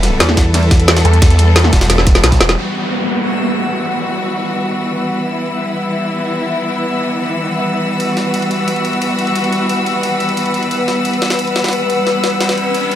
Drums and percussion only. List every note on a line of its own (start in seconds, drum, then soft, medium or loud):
0.03 snare medium
0.03 closed hi-hat medium
0.03 ride medium
0.20 snare loud
0.20 closed hi-hat loud
0.20 ride medium
0.29 snare medium
0.29 ride soft
0.37 kick medium
0.37 snare loud
0.37 closed hi-hat medium
0.37 ride medium
0.54 snare soft
0.54 closed hi-hat loud
0.54 ride medium
0.63 ride soft
0.71 kick loud
0.71 snare loud
0.71 closed hi-hat medium
0.71 ride medium
0.80 closed hi-hat soft
0.88 snare loud
0.88 closed hi-hat loud
0.88 ride medium
0.97 snare loud
0.97 closed hi-hat soft
0.97 ride medium
1.05 closed hi-hat medium
1.13 closed hi-hat soft
1.22 kick loud
1.22 snare loud
1.22 closed hi-hat loud
1.22 ride medium
1.30 closed hi-hat soft
1.39 closed hi-hat medium
1.39 ride medium
1.56 snare loud
1.56 closed hi-hat loud
1.56 ride medium
1.64 snare medium
1.73 kick medium
1.73 snare loud
1.73 closed hi-hat medium
1.73 ride medium
1.81 snare loud
1.81 ride medium
1.90 snare medium
1.90 closed hi-hat loud
1.90 ride medium
1.98 snare medium
2.07 kick loud
2.07 snare soft
2.07 closed hi-hat medium
2.07 ride medium
2.15 snare medium
2.15 closed hi-hat soft
2.15 ride medium
2.24 snare medium
2.24 closed hi-hat loud
2.24 ride medium
2.32 kick medium
2.32 snare soft
2.32 closed hi-hat soft
2.32 ride medium
2.41 snare loud
2.41 closed hi-hat medium
2.41 ride medium
2.49 snare medium
2.49 closed hi-hat soft
2.49 ride soft
8.00 ride medium
8.17 snare medium
8.17 ride medium
8.34 ride medium
8.42 ride soft
8.51 ride medium
8.68 ride medium
8.76 ride soft
8.85 ride medium
8.93 ride soft
9.02 ride medium
9.19 ride medium
9.27 ride soft
9.36 ride medium
9.44 ride soft
9.52 ride medium
9.69 ride medium
9.86 ride medium
10.03 ride medium
10.20 ride medium
10.29 ride soft
10.37 ride medium
10.46 ride soft
10.54 ride medium
10.63 ride soft
10.71 ride medium
10.88 snare medium
10.88 ride medium
11.05 ride medium
11.13 ride soft
11.22 snare loud
11.22 ride medium
11.30 snare loud
11.30 ride medium
11.39 ride medium
11.47 ride soft
11.56 snare loud
11.56 ride medium
11.64 snare medium
11.64 ride medium
11.69 snare medium
11.69 ride medium
11.73 ride medium
11.90 ride medium
12.07 snare soft
12.07 ride medium
12.24 snare loud
12.24 ride medium
12.41 snare loud
12.41 ride medium
12.49 snare loud
12.49 ride medium
12.58 ride medium
12.74 ride medium
12.91 ride medium